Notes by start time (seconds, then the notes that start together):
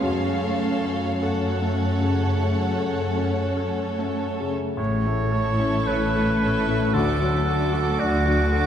0.02 F#2 A3 C#4 A4 C#5 F5
0.43 A4
0.85 C#4
1.21 A3 C#4 A4 C#5 F#5
1.62 A3
2.01 C#3
2.39 A3
2.78 A4
3.17 C#4
3.57 A4
3.99 A3
4.40 C#3
4.77 A1 A2 C#5
5.07 A3
5.32 E4 A4 C#6
5.59 C#4
5.87 A1 A2 B4 C#5
6.16 A4
6.40 C#4 E4 A4 C#6
6.68 A3
6.92 D2 D4 F#4 A4 D6
7.21 F#3
7.46 D4 F#4 A4 D6
7.73 F#4
7.99 D2 F#4 D5
8.26 F#4
8.52 D4 F#4 A4 D6